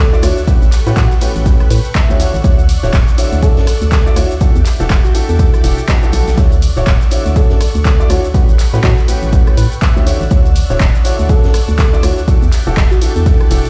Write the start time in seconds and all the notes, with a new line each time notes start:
Already playing: D2 A4 D5 C#6 E6 F#6
0.13 D3 D4 E4 F#4 D5, shaker
0.22 D2 D4 E4 F#4 C#5, cross-stick, closed hi-hat, open hi-hat, ride, shaker
0.37 closed hi-hat, shaker
0.47 A2 C#4 F#4 G4 A4 B4 G5 B5 C#6, kick, closed hi-hat, shaker
0.62 A1, closed hi-hat, shaker
0.72 clap, closed hi-hat, open hi-hat, ride, shaker
0.86 A2 C#4 F#4 G4 B4, closed hi-hat, shaker
0.96 A2 F#4, kick, cross-stick, snare, clap, closed hi-hat, shaker
1.11 closed hi-hat, shaker
1.21 A2 C#4 F#4 G4 B4, closed hi-hat, open hi-hat, ride, shaker
1.36 A1, closed hi-hat, shaker
1.46 A2 C#4 F#4 G4 B4, kick, closed hi-hat, shaker
1.60 cross-stick, closed hi-hat
1.70 A2 B4, closed hi-hat, open hi-hat, ride, shaker
1.85 closed hi-hat, shaker
1.95 E5, kick, snare, clap, closed hi-hat, shaker
2.09 D2 D3 C#4 F#4 G4 C#5, shaker
2.20 D3 D4 E4 F#4 C#5 D5 E6, closed hi-hat, open hi-hat, ride, shaker
2.34 A1, closed hi-hat, shaker
2.44 D2 D3 D4 E4 F#4 C#5, kick, closed hi-hat, shaker
2.59 closed hi-hat, shaker
2.69 closed hi-hat, open hi-hat, ride, shaker
2.83 D1 D3 D4 E4 F#4 C#5, snare, shaker
2.93 D1, kick, snare, clap, closed hi-hat, shaker
3.07 closed hi-hat, shaker
3.18 D3 D4 E4 F#4 C#5, closed hi-hat, open hi-hat, ride, shaker
3.32 D2, closed hi-hat, shaker
3.43 D3 D4 E4 F#4 A4 C#5, kick, closed hi-hat, shaker
3.57 F#2, snare, closed hi-hat
3.67 cross-stick, closed hi-hat, open hi-hat, ride, shaker
3.82 D2, closed hi-hat, shaker
3.92 kick, snare, clap, closed hi-hat, shaker
4.06 D3 D4 E4 F#4 D5, shaker
4.16 D2 E3 D4 E4 F#4 C#5, cross-stick, closed hi-hat, open hi-hat, ride, shaker
4.31 closed hi-hat, shaker
4.41 E3 D4 F#4 G4 A4 E5 D6 G6 A6, kick, closed hi-hat, shaker
4.55 E2, closed hi-hat, shaker
4.66 clap, closed hi-hat, open hi-hat, ride, shaker
4.80 E1 E3 D4 F#4 G4 A4, closed hi-hat, shaker
4.90 E1, kick, cross-stick, snare, clap, closed hi-hat, shaker
5.05 F#4, closed hi-hat, shaker
5.15 E3 D4 F#4 G4 A4, closed hi-hat, open hi-hat, ride, shaker
5.29 E2 A4, closed hi-hat, shaker
5.39 E3 D4 F#4 G4 A4, kick, closed hi-hat, shaker
5.54 cross-stick, closed hi-hat, shaker
5.64 E1 E3 D4 F#4 G4 A4, closed hi-hat, open hi-hat, ride, shaker
5.78 closed hi-hat, shaker
5.88 E3 D4 F#4 G4 B4, kick, snare, clap, closed hi-hat, shaker
6.03 E3 D4 F#4 G4 A4, closed hi-hat, shaker
6.12 B1 D3 D4 F#4 G4 A4, closed hi-hat, open hi-hat, ride, shaker
6.27 B1, snare, closed hi-hat, shaker
6.37 D2 D3 D4 E4 F#4 C#5 D5 C#6 E6, kick, closed hi-hat, shaker
6.52 closed hi-hat, shaker
6.62 closed hi-hat, open hi-hat, ride, shaker
6.77 D1 D3 D4 E4 F#4 C#5, snare, closed hi-hat, shaker
6.86 D1, kick, snare, clap, closed hi-hat, shaker
7.01 closed hi-hat, shaker
7.11 D3 D4 E4 F#4 C#5, closed hi-hat, open hi-hat, ride, shaker
7.26 D2, closed hi-hat, shaker
7.36 D3 D4 E4 F#4 A4 C#5, kick, closed hi-hat, shaker
7.50 F#2, snare, closed hi-hat
7.61 cross-stick, closed hi-hat, open hi-hat, ride, shaker
7.75 D2, closed hi-hat, shaker
7.85 kick, snare, clap, closed hi-hat, shaker
8.00 D3 D4 E4 F#4 D5, shaker
8.10 D2 D4 E4 F#4 C#5, cross-stick, closed hi-hat, open hi-hat, ride, shaker
8.24 closed hi-hat, shaker
8.34 A2 C#4 F#4 G4 A4 B4 G5 B5 C#6 F#6, kick, closed hi-hat, shaker
8.49 A1, closed hi-hat, shaker
8.59 clap, closed hi-hat, open hi-hat, ride, shaker
8.73 A2 C#4 F#4 G4 B4, shaker
8.84 A2 F#4, kick, cross-stick, snare, clap, closed hi-hat, shaker
8.98 closed hi-hat, shaker
9.08 A2 C#4 F#4 G4 B4, closed hi-hat, open hi-hat, ride, shaker
9.23 A1, closed hi-hat, shaker
9.32 A2 C#4 F#4 G4 B4, kick, closed hi-hat, shaker
9.47 cross-stick, closed hi-hat
9.57 A2 B4, closed hi-hat, open hi-hat, ride, shaker
9.72 closed hi-hat, shaker
9.81 E5, kick, snare, clap, closed hi-hat, shaker
9.96 D2 D3 C#4 F#4 G4 C#5, shaker
10.06 D3 D4 E4 F#4 C#5 D5 C#6 E6, closed hi-hat, open hi-hat, ride, shaker
10.21 A1, closed hi-hat, shaker
10.31 D2 D3 D4 E4 F#4 C#5, kick, closed hi-hat, shaker
10.46 closed hi-hat, shaker
10.55 closed hi-hat, open hi-hat, ride, shaker
10.70 D1 D3 D4 E4 F#4 C#5, snare, closed hi-hat, shaker
10.80 D1, kick, snare, clap, closed hi-hat, shaker
10.95 closed hi-hat, shaker
11.05 D3 D4 E4 F#4 C#5, closed hi-hat, open hi-hat, ride, shaker
11.19 D2, closed hi-hat, shaker
11.29 D3 D4 E4 F#4 A4 C#5, kick, closed hi-hat, shaker
11.44 F#2, snare, closed hi-hat
11.54 cross-stick, closed hi-hat, open hi-hat, ride, shaker
11.68 D2, closed hi-hat, shaker
11.78 kick, snare, clap, closed hi-hat, shaker
11.93 D3 D4 E4 F#4 D5, shaker
12.03 D2 E3 D4 E4 F#4 C#5, cross-stick, closed hi-hat, open hi-hat, ride, shaker
12.18 closed hi-hat, shaker
12.28 E3 D4 F#4 G4 A4 E5 D6 G6 A6, kick, closed hi-hat, shaker
12.42 E2, closed hi-hat, shaker
12.52 clap, closed hi-hat, open hi-hat, ride, shaker
12.67 E1 E3 D4 F#4 G4 A4, closed hi-hat, shaker
12.77 E1, kick, cross-stick, snare, clap, closed hi-hat, shaker
12.91 F#4, closed hi-hat, shaker
13.02 E3 D4 F#4 G4 A4, closed hi-hat, open hi-hat, ride, shaker
13.16 E2 A4, closed hi-hat, shaker
13.26 E3 D4 F#4 G4 A4, kick, closed hi-hat, shaker
13.41 cross-stick, closed hi-hat
13.50 E1 E3 D4 F#4 G4 A4, closed hi-hat, open hi-hat, ride, shaker
13.65 closed hi-hat, shaker